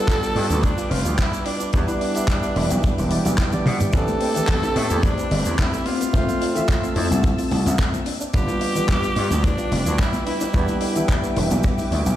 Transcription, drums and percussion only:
0.08 kick, clap, closed hi-hat, shaker
0.23 closed hi-hat, shaker
0.36 open hi-hat
0.50 closed hi-hat, shaker
0.63 kick, closed hi-hat, shaker
0.78 closed hi-hat, shaker
0.91 open hi-hat
1.05 closed hi-hat, shaker
1.18 kick, clap, closed hi-hat, shaker
1.33 closed hi-hat, shaker
1.46 open hi-hat
1.60 closed hi-hat, shaker
1.73 kick, closed hi-hat, shaker
1.88 closed hi-hat, shaker
2.01 open hi-hat
2.15 closed hi-hat, shaker
2.28 kick, clap, closed hi-hat, shaker
2.43 closed hi-hat, shaker
2.56 open hi-hat
2.70 closed hi-hat, shaker
2.83 kick, closed hi-hat, shaker
2.98 open hi-hat, shaker
3.11 open hi-hat
3.25 closed hi-hat, shaker
3.38 kick, clap, closed hi-hat, shaker
3.52 closed hi-hat, high tom, shaker
3.66 open hi-hat, mid tom
3.80 closed hi-hat, mid tom, shaker
3.93 kick, closed hi-hat, cabasa, shaker
4.08 closed hi-hat, high bongo, high conga, cabasa, shaker
4.21 open hi-hat, cabasa
4.35 closed hi-hat, low conga, cabasa, shaker
4.47 kick, clap, closed hi-hat, high conga, cabasa, shaker
4.63 closed hi-hat, high bongo, cabasa, shaker
4.76 open hi-hat, cabasa
4.90 closed hi-hat, high conga, cabasa, shaker
5.03 kick, closed hi-hat, high bongo, cabasa, shaker
5.18 closed hi-hat, shaker
5.31 open hi-hat, high conga, cabasa
5.45 closed hi-hat, cabasa, shaker
5.58 kick, clap, closed hi-hat, high bongo, cabasa, shaker
5.73 closed hi-hat, high conga, cabasa, shaker
5.86 open hi-hat, cabasa
6.01 closed hi-hat, high bongo, cabasa, shaker
6.14 kick, closed hi-hat, cabasa, shaker
6.29 closed hi-hat, high conga, cabasa, shaker
6.41 open hi-hat, cabasa
6.55 closed hi-hat, high bongo, low conga, cabasa, shaker
6.68 kick, clap, closed hi-hat, high conga, cabasa, shaker
6.83 closed hi-hat, cabasa, shaker
6.96 open hi-hat, high bongo, cabasa
7.11 closed hi-hat, high conga, cabasa, shaker
7.23 kick, closed hi-hat, cabasa, shaker
7.38 open hi-hat, cabasa, shaker
7.51 open hi-hat, high bongo, high conga, cabasa
7.66 closed hi-hat, cabasa, shaker
7.79 kick, clap, closed hi-hat, cabasa, shaker
7.94 closed hi-hat, high bongo, high conga, cabasa, shaker
8.06 open hi-hat, cabasa
8.21 closed hi-hat, cabasa, shaker
8.33 kick, closed hi-hat, cabasa, shaker
8.48 closed hi-hat, high bongo, high conga, cabasa, shaker
8.60 open hi-hat, cabasa
8.75 closed hi-hat, low conga, cabasa, shaker
8.88 kick, clap, closed hi-hat, high bongo, high conga, cabasa, shaker
9.03 closed hi-hat, cabasa, shaker
9.15 open hi-hat, cabasa
9.30 closed hi-hat, high conga, cabasa, shaker
9.43 kick, closed hi-hat, high bongo, cabasa, shaker
9.58 closed hi-hat, shaker
9.72 open hi-hat, high conga, cabasa
9.86 closed hi-hat, high bongo, cabasa, shaker
9.99 kick, clap, closed hi-hat, shaker
10.13 closed hi-hat, high conga, cabasa, shaker
10.26 open hi-hat, cabasa
10.41 closed hi-hat, high bongo, cabasa, shaker
10.54 kick, closed hi-hat, cabasa, shaker
10.68 closed hi-hat, high conga, cabasa, shaker
10.81 open hi-hat, high bongo, cabasa
10.95 closed hi-hat, low conga, cabasa, shaker
11.09 kick, clap, closed hi-hat, high conga, cabasa, shaker
11.24 closed hi-hat, cabasa, shaker
11.36 open hi-hat, high bongo, low conga, cabasa
11.51 closed hi-hat, high conga, cabasa, shaker
11.63 kick, closed hi-hat, cabasa, shaker
11.78 open hi-hat, high bongo, cabasa, shaker
11.92 open hi-hat, high conga, cabasa
12.06 closed hi-hat, shaker

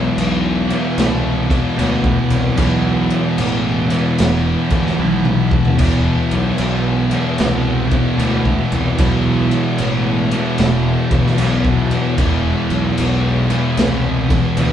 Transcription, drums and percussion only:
0.18 crash
0.70 crash
0.98 snare, crash
1.50 kick, crash
1.79 crash
2.04 kick
2.30 crash
2.57 kick, crash
3.10 crash
3.38 crash
3.90 crash
4.18 snare, crash
4.70 kick, crash
4.86 snare
4.98 high tom
5.25 mid tom
5.51 kick
5.65 floor tom
5.79 kick, crash
6.31 crash
6.58 crash
7.11 crash
7.38 snare, crash
7.91 kick, crash
8.19 crash
8.45 kick
8.72 crash
8.98 kick, crash
9.51 crash
9.78 crash
10.31 crash
10.58 snare, crash
11.11 kick, crash
11.27 snare
11.38 crash
11.65 kick
11.91 crash
12.18 kick, crash
12.70 crash
12.97 crash
13.50 crash
13.77 snare, crash
14.30 kick, crash
14.57 crash

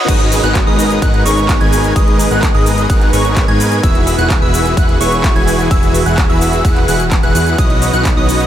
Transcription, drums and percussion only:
0.08 kick, closed hi-hat, crash, ride, shaker
0.20 closed hi-hat
0.32 open hi-hat, shaker
0.44 closed hi-hat, shaker
0.55 kick, clap, closed hi-hat, ride, shaker
0.79 open hi-hat, shaker
0.90 closed hi-hat, shaker
1.02 kick, closed hi-hat, ride, shaker
1.14 closed hi-hat
1.26 open hi-hat, shaker
1.37 closed hi-hat, shaker
1.49 kick, clap, closed hi-hat, ride, shaker
1.61 closed hi-hat
1.72 open hi-hat, shaker
1.84 closed hi-hat, shaker
1.96 kick, closed hi-hat, ride, shaker
2.08 closed hi-hat
2.19 open hi-hat, shaker
2.31 closed hi-hat, shaker
2.43 kick, clap, closed hi-hat, ride, shaker
2.66 open hi-hat, shaker
2.78 closed hi-hat, shaker
2.90 kick, closed hi-hat, ride, shaker
3.01 clap, closed hi-hat
3.13 open hi-hat, shaker
3.25 closed hi-hat, shaker
3.36 kick, clap, closed hi-hat, ride, shaker
3.48 closed hi-hat
3.60 open hi-hat, shaker
3.72 closed hi-hat, shaker
3.83 kick, closed hi-hat, ride, shaker
3.95 closed hi-hat
4.07 open hi-hat, shaker
4.19 closed hi-hat, shaker
4.30 kick, clap, closed hi-hat, ride, shaker
4.54 open hi-hat, shaker
4.66 closed hi-hat, shaker
4.77 kick, closed hi-hat, ride, shaker
4.89 closed hi-hat
5.01 open hi-hat, shaker
5.12 closed hi-hat, shaker
5.24 kick, clap, closed hi-hat, ride, shaker
5.36 closed hi-hat
5.48 open hi-hat, shaker
5.59 closed hi-hat, shaker
5.71 kick, closed hi-hat, ride, shaker
5.83 closed hi-hat, shaker
5.94 open hi-hat, shaker
6.06 closed hi-hat, shaker
6.18 kick, clap, closed hi-hat, ride, shaker
6.41 open hi-hat, shaker
6.53 closed hi-hat, shaker
6.65 kick, closed hi-hat, ride, shaker
6.76 clap, closed hi-hat
6.88 open hi-hat, shaker
7.00 closed hi-hat, shaker
7.11 kick, clap, closed hi-hat, ride, shaker
7.23 closed hi-hat
7.35 open hi-hat, shaker
7.47 closed hi-hat, shaker
7.58 kick, closed hi-hat, ride, shaker
7.70 closed hi-hat
7.82 open hi-hat, shaker
7.94 closed hi-hat, shaker
8.05 kick, clap, closed hi-hat, ride, shaker
8.29 open hi-hat, shaker
8.40 closed hi-hat, shaker

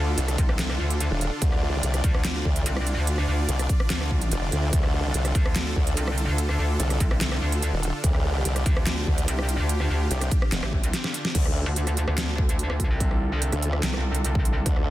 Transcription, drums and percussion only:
0.18 closed hi-hat
0.28 cross-stick, closed hi-hat
0.38 kick, closed hi-hat
0.49 cross-stick
0.59 snare, clap, closed hi-hat
0.70 cross-stick
0.90 closed hi-hat
1.00 closed hi-hat
1.21 closed hi-hat
1.42 kick, closed hi-hat
1.52 cross-stick
1.83 closed hi-hat
1.94 cross-stick, closed hi-hat
2.04 kick, closed hi-hat
2.15 cross-stick
2.25 snare, clap, closed hi-hat
2.45 kick
2.56 closed hi-hat
2.66 closed hi-hat
2.77 cross-stick
2.87 closed hi-hat
3.07 closed hi-hat
3.18 cross-stick
3.49 closed hi-hat
3.59 cross-stick, closed hi-hat
3.69 kick, closed hi-hat
3.80 cross-stick
3.90 snare, clap, closed hi-hat
4.01 cross-stick
4.11 kick
4.21 closed hi-hat
4.32 closed hi-hat
4.52 closed hi-hat
4.73 kick, closed hi-hat
4.83 cross-stick
5.14 closed hi-hat
5.25 cross-stick, closed hi-hat
5.35 kick, closed hi-hat
5.46 cross-stick
5.56 snare, clap, closed hi-hat
5.76 kick
5.87 closed hi-hat
5.97 closed hi-hat
6.08 cross-stick
6.18 closed hi-hat
6.38 closed hi-hat
6.49 cross-stick
6.80 closed hi-hat
6.90 cross-stick, closed hi-hat
7.00 kick, closed hi-hat
7.11 cross-stick
7.21 snare, clap, closed hi-hat
7.32 cross-stick
7.52 closed hi-hat
7.62 closed hi-hat
7.83 closed hi-hat
8.04 kick, closed hi-hat
8.15 cross-stick
8.45 closed hi-hat
8.56 cross-stick, closed hi-hat
8.66 kick, closed hi-hat
8.77 cross-stick
8.87 snare, clap, closed hi-hat
9.07 kick
9.18 closed hi-hat
9.28 closed hi-hat
9.39 cross-stick
9.49 closed hi-hat
9.69 closed hi-hat
9.80 cross-stick
10.11 closed hi-hat
10.21 cross-stick, closed hi-hat
10.31 kick, closed hi-hat
10.42 cross-stick
10.52 snare, clap, closed hi-hat
10.63 cross-stick
10.73 kick
10.84 closed hi-hat
10.93 snare, closed hi-hat
11.04 snare
11.14 closed hi-hat
11.25 snare
11.35 kick, closed hi-hat, crash
11.46 cross-stick
11.76 closed hi-hat
11.87 cross-stick, closed hi-hat
11.97 closed hi-hat
12.08 cross-stick
12.18 snare, clap, closed hi-hat
12.38 kick
12.49 closed hi-hat
12.59 closed hi-hat
12.70 cross-stick
12.80 kick, closed hi-hat
13.00 kick, closed hi-hat
13.11 cross-stick
13.42 closed hi-hat
13.52 cross-stick, closed hi-hat
13.62 closed hi-hat
13.73 cross-stick
13.83 snare, clap, closed hi-hat
13.94 cross-stick
14.15 closed hi-hat
14.24 closed hi-hat
14.35 kick
14.45 closed hi-hat
14.66 kick, closed hi-hat
14.77 cross-stick

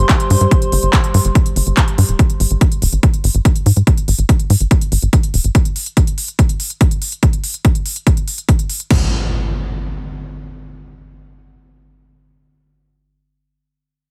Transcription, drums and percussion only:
0.09 kick, clap, closed hi-hat
0.20 closed hi-hat
0.30 open hi-hat
0.41 closed hi-hat
0.51 kick, closed hi-hat
0.62 closed hi-hat
0.72 open hi-hat
0.83 closed hi-hat
0.93 kick, clap, closed hi-hat
1.04 closed hi-hat
1.14 open hi-hat
1.25 closed hi-hat
1.35 kick, closed hi-hat
1.46 closed hi-hat
1.56 open hi-hat
1.67 closed hi-hat
1.77 kick, clap, closed hi-hat
1.88 closed hi-hat
1.98 open hi-hat
2.09 closed hi-hat
2.19 kick, closed hi-hat
2.30 closed hi-hat
2.40 open hi-hat
2.51 closed hi-hat
2.61 kick, closed hi-hat
2.72 closed hi-hat
2.82 open hi-hat
2.93 closed hi-hat
3.03 kick, closed hi-hat
3.14 closed hi-hat
3.24 open hi-hat
3.35 closed hi-hat
3.45 kick, closed hi-hat
3.56 closed hi-hat
3.66 open hi-hat
3.77 closed hi-hat
3.87 kick, closed hi-hat
3.98 closed hi-hat
4.08 open hi-hat
4.19 closed hi-hat
4.29 kick, closed hi-hat
4.40 closed hi-hat
4.50 open hi-hat
4.60 closed hi-hat
4.71 kick, closed hi-hat
4.81 closed hi-hat
4.92 open hi-hat
5.02 closed hi-hat
5.13 kick, closed hi-hat
5.23 closed hi-hat
5.34 open hi-hat
5.44 closed hi-hat
5.55 kick, closed hi-hat
5.65 closed hi-hat
5.76 open hi-hat
5.86 closed hi-hat
5.97 kick, closed hi-hat
6.07 closed hi-hat
6.18 open hi-hat
6.28 closed hi-hat
6.39 kick, closed hi-hat
6.49 closed hi-hat
6.60 open hi-hat
6.70 closed hi-hat
6.81 kick, closed hi-hat
6.91 closed hi-hat
7.02 open hi-hat
7.12 closed hi-hat
7.23 kick, closed hi-hat
7.33 closed hi-hat
7.44 open hi-hat
7.54 closed hi-hat
7.65 kick, closed hi-hat
7.75 closed hi-hat
7.86 open hi-hat
7.96 closed hi-hat
8.07 kick, closed hi-hat
8.17 closed hi-hat
8.28 open hi-hat
8.38 closed hi-hat
8.49 kick, closed hi-hat
8.59 closed hi-hat
8.70 open hi-hat
8.80 closed hi-hat
8.90 kick, crash

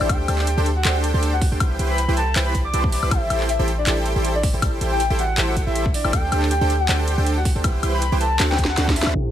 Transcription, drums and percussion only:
0.01 high woodblock
0.09 kick, closed hi-hat, high woodblock
0.28 closed hi-hat, high woodblock
0.39 clap
0.47 closed hi-hat
0.66 closed hi-hat
0.85 clap, closed hi-hat
1.04 closed hi-hat
1.23 closed hi-hat
1.42 kick, open hi-hat
1.60 kick, closed hi-hat, high woodblock
1.79 closed hi-hat
1.98 closed hi-hat
2.17 closed hi-hat
2.36 clap, closed hi-hat
2.55 kick, closed hi-hat
2.74 closed hi-hat
2.84 kick
2.92 open hi-hat
3.03 high woodblock
3.11 kick, closed hi-hat, ride, high woodblock
3.30 closed hi-hat, high woodblock
3.40 clap
3.49 closed hi-hat
3.68 closed hi-hat
3.87 clap, closed hi-hat
4.06 closed hi-hat
4.25 closed hi-hat
4.43 kick, open hi-hat
4.62 kick, closed hi-hat, ride, high woodblock
4.81 closed hi-hat
5.00 closed hi-hat
5.19 closed hi-hat
5.38 clap, closed hi-hat
5.57 kick, closed hi-hat
5.75 closed hi-hat
5.86 kick
5.94 open hi-hat
6.05 high woodblock
6.13 kick, closed hi-hat, ride, high woodblock
6.32 closed hi-hat, high woodblock
6.42 clap
6.51 closed hi-hat
6.70 closed hi-hat
6.89 clap, closed hi-hat
7.08 closed hi-hat
7.26 closed hi-hat
7.45 kick, open hi-hat
7.64 kick, closed hi-hat, ride, high woodblock
7.83 closed hi-hat, high woodblock
8.02 closed hi-hat
8.21 closed hi-hat
8.40 snare, clap, closed hi-hat
8.52 snare
8.59 kick, closed hi-hat
8.65 snare
8.77 snare, closed hi-hat
8.88 kick, snare
8.96 open hi-hat
9.03 snare, high woodblock
9.15 closed hi-hat

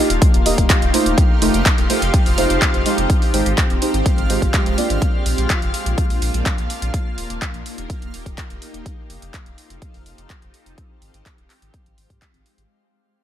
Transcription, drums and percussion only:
0.10 closed hi-hat
0.22 kick, closed hi-hat
0.34 closed hi-hat
0.46 open hi-hat
0.58 kick, closed hi-hat
0.70 kick, clap, closed hi-hat
0.82 closed hi-hat
0.94 open hi-hat
1.06 closed hi-hat
1.18 kick, closed hi-hat
1.42 open hi-hat
1.54 closed hi-hat
1.66 kick, clap, closed hi-hat
1.78 closed hi-hat
1.90 open hi-hat
2.02 closed hi-hat
2.14 kick, closed hi-hat
2.26 open hi-hat
2.38 open hi-hat
2.50 closed hi-hat
2.62 kick, clap, closed hi-hat
2.74 closed hi-hat
2.86 open hi-hat
2.98 closed hi-hat
3.10 kick, closed hi-hat
3.22 open hi-hat
3.34 open hi-hat
3.46 closed hi-hat
3.58 kick, clap, closed hi-hat
3.70 closed hi-hat
3.82 open hi-hat
3.94 closed hi-hat
4.06 kick, closed hi-hat
4.18 closed hi-hat
4.30 open hi-hat
4.42 kick, closed hi-hat
4.54 kick, clap, closed hi-hat
4.66 closed hi-hat
4.78 open hi-hat
4.90 closed hi-hat
5.02 kick, closed hi-hat
5.26 open hi-hat
5.38 closed hi-hat
5.50 kick, clap, closed hi-hat
5.62 closed hi-hat
5.74 open hi-hat
5.86 closed hi-hat
5.98 kick, closed hi-hat
6.10 open hi-hat
6.22 open hi-hat
6.34 closed hi-hat
6.46 kick, clap, closed hi-hat
6.58 closed hi-hat
6.70 open hi-hat
6.82 closed hi-hat
6.94 kick, closed hi-hat
7.18 open hi-hat
7.30 closed hi-hat
7.42 kick, clap, closed hi-hat
7.54 closed hi-hat
7.66 open hi-hat
7.78 closed hi-hat
7.90 kick, closed hi-hat
8.02 closed hi-hat
8.14 open hi-hat
8.26 kick, closed hi-hat
8.38 kick, clap, closed hi-hat
8.50 closed hi-hat
8.62 open hi-hat
8.74 closed hi-hat
8.86 kick, closed hi-hat
9.10 open hi-hat
9.22 closed hi-hat
9.34 kick, clap, closed hi-hat
9.46 closed hi-hat
9.58 open hi-hat
9.70 closed hi-hat
9.82 kick, closed hi-hat
9.94 open hi-hat
10.06 open hi-hat
10.18 closed hi-hat
10.30 kick, clap, closed hi-hat
10.42 closed hi-hat
10.54 open hi-hat
10.66 closed hi-hat
10.78 kick, closed hi-hat
11.02 open hi-hat
11.14 closed hi-hat
11.26 kick, clap, closed hi-hat
11.38 closed hi-hat
11.50 clap, open hi-hat
11.62 closed hi-hat
11.74 kick, closed hi-hat
11.86 closed hi-hat
11.98 open hi-hat
12.10 kick, closed hi-hat
12.22 kick, clap, closed hi-hat
12.34 closed hi-hat
12.46 open hi-hat
12.58 closed hi-hat

